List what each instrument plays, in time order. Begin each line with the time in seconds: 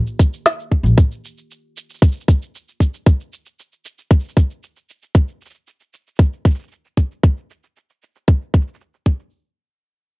Already playing: ambient pad D#3 A#3 F4 G4
0.07 shaker
0.19 kick, shaker
0.33 shaker
0.46 snare, shaker
0.60 shaker
0.72 kick
0.83 upright bass A#1, shaker
0.98 kick, shaker
1.12 shaker
1.25 shaker
1.38 shaker
1.51 shaker
1.77 shaker
1.90 shaker
1.94 shaker
1.98 kick, shaker
2.03 shaker
2.08 shaker
2.12 shaker
2.17 shaker
2.21 shaker
2.28 kick, shaker
2.42 shaker
2.55 shaker
2.68 shaker
2.80 kick, shaker
2.94 shaker
3.06 kick, shaker
3.20 shaker
3.33 shaker
3.46 shaker
3.59 shaker
3.72 shaker
3.85 shaker
3.98 shaker
4.11 kick, shaker
4.20 shaker
4.24 shaker
4.29 shaker
4.37 kick, shaker
4.50 shaker
4.63 shaker
4.76 shaker
4.89 shaker
5.03 shaker
5.15 kick, shaker
5.28 shaker
5.41 shaker
5.46 shaker
5.50 shaker
5.54 shaker
5.67 shaker
5.80 shaker
5.94 shaker
6.07 shaker
6.16 kick, shaker
6.20 shaker
6.33 shaker
6.45 kick, shaker
6.51 shaker
6.55 shaker
6.59 shaker
6.63 shaker
6.68 shaker
6.72 shaker
6.85 shaker
6.97 kick, shaker
7.11 shaker
7.23 kick, shaker
7.37 shaker
7.50 shaker
7.63 shaker
7.77 shaker
7.90 shaker
8.02 shaker
8.16 shaker
8.28 kick
8.42 shaker
8.54 kick, shaker
8.61 shaker
8.67 shaker
8.74 shaker
8.81 shaker
8.94 shaker
9.06 kick, shaker
9.19 shaker